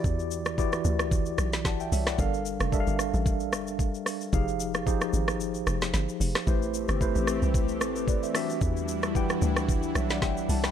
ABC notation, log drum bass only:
X:1
M:4/4
L:1/16
Q:"Swing 16ths" 1/4=112
K:Ephr
V:1 name="Log drum bass" clef=bass
E,,6 D,,4 B,,,4 C,,2 | G,,,3 F,,,2 G,,,2 A,,,3 G,,,2 z4 | F,,,6 _A,,,4 F,,,2 G,,, z F,,, z | A,,,3 G,,,2 A,,,2 C,,3 A,,,2 z4 |
E,,6 D,,4 B,,,4 C,,2 |]